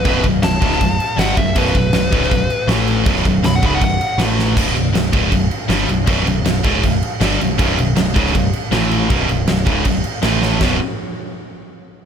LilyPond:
<<
  \new Staff \with { instrumentName = "Lead electric guitar" } { \time 4/4 \key a \mixolydian \tempo 4 = 159 b'8 r8 a''2 fis''8 e''8 | b'2. r4 | r4 b''16 fis''16 b''16 fis''16 fis''4 r4 | r1 |
r1 | r1 | r1 | r1 | }
  \new Staff \with { instrumentName = "Distorted electric guitar" } { \clef bass \time 4/4 \key a \mixolydian <b,, fis, b,>8 <b,, fis,>8 <b,, fis,>8 <cis, gis, cis>8 <b,, fis,>8 r8 <g, d g>8 <b,, fis,>8 | <b,, fis, b,>8 <b,, fis,>8 <b,, fis,>8 <cis, gis, cis>8 <b,, fis,>8 r8 <a, e a>4 | <b,, fis, b,>8 <b,, fis,>8 <b,, fis,>8 <cis, gis, cis>8 <b,, fis,>8 r8 <a, e a>4 | <b,, fis, b,>8 <b,, fis,>8 <b,, fis,>8 <cis, gis, cis>8 <b,, fis,>8 r8 <g, d g>8 <b,, fis,>8 |
<b,, fis, b,>8 <b,, fis,>8 <b,, fis,>8 <cis, gis, cis>8 <b,, fis,>8 r8 <g, d g>8 <b,, fis,>8 | <b,, fis, b,>8 <b,, fis,>8 <b,, fis,>8 <cis, gis, cis>8 <b,, fis,>8 r8 <a, e a>4 | <b,, fis, b,>8 <b,, fis,>8 <b,, fis,>8 <cis, gis, cis>8 <b,, fis,>8 r8 <a, e a>4 | <b,, fis, b,>8 r2. r8 | }
  \new Staff \with { instrumentName = "Distorted electric guitar" } { \clef bass \time 4/4 \key a \mixolydian <b,, fis, b,>8 <b,, fis,>8 <b,, fis,>8 <cis, gis, cis>8 <b,, fis,>8 r8 <g, d g>8 <b,, fis,>8 | <b,, fis, b,>8 <b,, fis,>8 <b,, fis,>8 <cis, gis, cis>8 <b,, fis,>8 r8 <a, e a>4 | <b,, fis, b,>8 <b,, fis,>8 <b,, fis,>8 <cis, gis, cis>8 <b,, fis,>8 r8 <a, e a>4 | <b,, fis, b,>8 <b,, fis,>8 <b,, fis,>8 <cis, gis, cis>8 <b,, fis,>8 r8 <g, d g>8 <b,, fis,>8 |
<b,, fis, b,>8 <b,, fis,>8 <b,, fis,>8 <cis, gis, cis>8 <b,, fis,>8 r8 <g, d g>8 <b,, fis,>8 | <b,, fis, b,>8 <b,, fis,>8 <b,, fis,>8 <cis, gis, cis>8 <b,, fis,>8 r8 <a, e a>4 | <b,, fis, b,>8 <b,, fis,>8 <b,, fis,>8 <cis, gis, cis>8 <b,, fis,>8 r8 <a, e a>4 | <b,, fis, b,>8 r2. r8 | }
  \new Staff \with { instrumentName = "Distorted electric guitar" } { \clef bass \time 4/4 \key a \mixolydian <b,, fis, b,>8 <b,, fis,>8 <b,, fis,>8 <cis, gis, cis>8 <b,, fis,>8 r8 <g, d g>8 <b,, fis,>8 | <b,, fis, b,>8 <b,, fis,>8 <b,, fis,>8 <cis, gis, cis>8 <b,, fis,>8 r8 <a, e a>4 | <b,, fis, b,>8 <b,, fis,>8 <b,, fis,>8 <cis, gis, cis>8 <b,, fis,>8 r8 <a, e a>4 | r1 |
r1 | <b,, fis, b,>8 <b,, fis,>8 <b,, fis,>8 <cis, gis, cis>8 <b,, fis,>8 r8 <a, e a>4 | <b,, fis, b,>8 <b,, fis,>8 <b,, fis,>8 <cis, gis, cis>8 <b,, fis,>8 r8 <a, e a>4 | <b,, fis, b,>8 r2. r8 | }
  \new Staff \with { instrumentName = "Picked electric bass" } { \clef bass \time 4/4 \key a \mixolydian b,,,8 b,,,8 b,,,8 cis,,8 b,,,8 r8 g,,8 b,,,8 | b,,,8 b,,,8 b,,,8 cis,,8 b,,,8 r8 a,,4 | b,,,8 b,,,8 b,,,8 cis,,8 b,,,8 r8 a,,4 | b,,,8 b,,,8 b,,,8 cis,,8 b,,,8 r8 g,,8 b,,,8 |
b,,,8 b,,,8 b,,,8 cis,,8 b,,,8 r8 g,,8 b,,,8 | b,,,8 b,,,8 b,,,8 cis,,8 b,,,8 r8 a,,4 | b,,,8 b,,,8 b,,,8 cis,,8 b,,,8 r8 a,,4 | b,,,8 r2. r8 | }
  \new DrumStaff \with { instrumentName = "Drums" } \drummode { \time 4/4 <cymc bd>8 <cymc bd>8 <cymc sn>8 <cymc bd>16 sn16 <cymc bd>8 cymc8 <cymc sn>8 <cymc bd>8 | <cymc bd>16 sn16 <cymc bd>8 <cymc sn>8 <cymc bd>16 sn16 <cymc bd>8 cymc8 <cymc sn>8 cymc8 | <cymc bd>16 sn16 <cymc bd>8 <cymc sn>8 <cymc bd>8 <cymc bd>8 cymc8 <cymc sn>8 sn8 | <cymc bd>8 cymc8 <cymc sn>8 <cymc bd>8 <cymc bd>8 cymc8 <cymc sn>8 cymc8 |
<cymc bd>8 cymc8 <cymc sn>8 <cymc bd>8 <cymc bd>8 cymc8 <cymc sn>8 cymc8 | <cymc bd>8 cymc8 <cymc sn>8 <cymc bd>16 sn16 <cymc bd>8 cymc8 <cymc sn>8 cymc8 | <cymc bd>8 cymc8 <cymc sn>8 <cymc bd>8 <cymc bd>8 cymc8 <cymc sn>8 sn8 | <cymc bd sn>4 r4 r4 r4 | }
>>